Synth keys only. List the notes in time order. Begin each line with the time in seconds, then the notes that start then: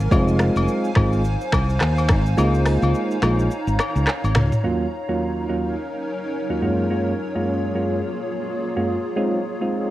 0.11 G#3 C4 D#4 F4
0.96 G#3 C4 D#4 F4
2.37 G#3 A#3 D#4 F4
3.22 G#3 A#3 D#4 F4
4.64 D#2 F#3 A#3 C#4 F4
5.08 D#2 F#3 A#3 C#4 F4
5.49 D#2 F#3 A#3 C#4 F4
6.50 D#2 F#3 A#3 C#4 F4
6.62 F#2 G#3 A#3 C#4 F4
6.90 F#2 G#3 A#3 C#4 F4
7.35 F#2 G#3 A#3 C#4 F4
7.75 F#2 G#3 A#3 C#4 F4
8.76 F#2 G#3 A#3 C#4 F4
9.16 G#3 C4 D#4 F4
9.61 G#3 C4 D#4 F4